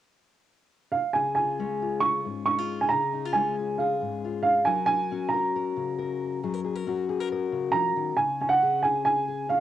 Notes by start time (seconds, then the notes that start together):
0.92 F5
1.13 C#3 G#4 G#5
1.35 F4 G#5
1.59 G#3 C#4
1.82 F4
2.00 G#4 C#6
2.25 G#2
2.46 D#4 C#6
2.59 F4
2.81 G#5
2.89 C#3 G#4 A#5
3.13 D#4
3.25 F4
3.33 G#3 C#4 G#5
3.59 F4
3.78 G#4 F5
4.01 G#2
4.25 F4
4.43 F5
4.65 F#3 A#4 G#5
4.86 G#5
4.90 A#4
5.12 C#4 F#4
5.29 A#5
5.34 A#4
5.56 A#4
5.76 C#3
5.99 A#4
6.44 F#3 G#4
6.54 A#4
6.64 G#4
6.75 A#4
6.87 C#4 F#4
7.09 G#4
7.20 A#4
7.32 A#4
7.52 C#3
7.72 F3 A#5
7.96 D#3
8.17 C#3 G#5
8.41 C#4 G#5
8.49 F#5
8.63 G#4
8.83 G#4 G#5
9.05 G#4 G#5
9.28 G#4
9.49 C#4 F5